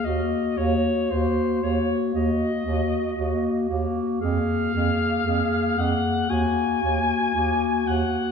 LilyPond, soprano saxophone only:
\new Staff \with { instrumentName = "Soprano saxophone" } { \time 4/4 \key ees \dorian \tempo 4 = 58 ees''8 des''8 c''8 des''8 ees''4. r8 | f''4. ges''8 aes''4. ges''8 | }